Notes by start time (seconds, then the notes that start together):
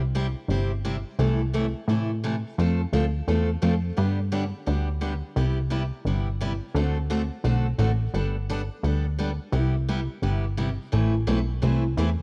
Already playing: C2
0.15 C3 G3 C4 E4 G4
0.48 G1 C3 G3 C4 E4 G4
0.85 C3 G3 C4 E4 G4
1.19 C2 C3 E3 A3 E4 A4
1.53 C3 E3 A3 E4 A4
1.88 A2 C3 E3 A3 E4 A4
2.24 C3 E3 A3 E4 A4
2.58 F2 F3 A3 C4 F4 A4
2.93 D2 F3 A3 C4 F4 A4
3.28 E2 F3 A3 C4 F4 A4
3.62 F2 F3 A3 C4 F4 A4
3.97 G2 D3 G3 B3 D4 G4
4.32 D3 G3 B3 D4 G4
4.66 D2 D3 G3 B3 D4 G4
5.01 D3 G3 B3 D4 G4
5.36 C2 C3 G3 B3 E4 G4
5.70 C3 G3 B3 E4 G4
6.05 G1 C3 G3 B3 E4 G4
6.41 C3 G3 B3 E4 G4
6.75 D2 D3 A3 C4 F#4 A4
7.10 D3 A3 C4 F#4 A4
7.44 B1 D3 A3 C4 F#4 A4
7.78 A1 D3 A3 C4 F#4 A4
8.14 G1 G3 B3 D4 A4
8.50 G3 B3 D4 A4
8.84 D2 G3 B3 D4 A4
9.19 G3 B3 D4 A4
9.52 C2 C3 G3 B3 E4 G4
9.89 C3 G3 B3 E4 G4
10.22 G1 C3 G3 B3 E4 G4
10.57 C3 G3 B3 E4 G4
10.92 A1 E3 A3 C4 E4 B4
11.27 B1 E3 A3 C4 E4 B4
11.62 C2 E3 A3 C4 E4 B4
11.97 E2 E3 A3 C4 E4 B4
12.19 E2